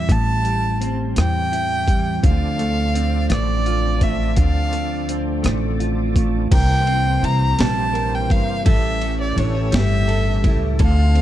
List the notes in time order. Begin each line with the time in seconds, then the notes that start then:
Already playing: E3 G3 C4 E4 E5
0.09 A1 A2 A5, kick, closed hi-hat
0.44 G3, closed hi-hat
0.81 C4, closed hi-hat
1.16 E2 E3 G5, cross-stick, closed hi-hat
1.52 E4, closed hi-hat
1.87 G3, kick, closed hi-hat
2.23 D2 D3 F3 C4 D4 A4 D5 F5, kick, closed hi-hat
2.59 A3, closed hi-hat
2.94 C4, closed hi-hat
3.30 A1 A3 D5, cross-stick, closed hi-hat
3.66 F4, closed hi-hat
4.01 A3 E5, kick, closed hi-hat
4.37 D2 D3 F5, kick, closed hi-hat
4.73 A3, closed hi-hat
5.08 C4, closed hi-hat
5.43 A1 A3, cross-stick, closed hi-hat
5.80 F4, closed hi-hat
6.16 A3, kick, closed hi-hat
6.51 C2 C3 E3 A#3 C4 G4 A#4 C5 G5, kick, crash, ride
6.87 C4, ride
7.23 C2 E4 A#5, ride
7.59 A#1 G3 A5, snare, ride
7.93 A#4, ride
8.15 G5
8.30 G1 F5, kick, ride
8.65 A1 A2 A3 C#4 A4 E5, kick, ride
9.01 C#4, ride
9.21 D5
9.37 A1 D4 C#5, ride
9.55 E4
9.72 G1 G3 E5, snare, ride
10.08 A4, ride
10.44 C#2 E4, kick, ride
10.79 D2 D3 C4 F4 A4, kick, ride
10.83 F5
11.15 C4, ride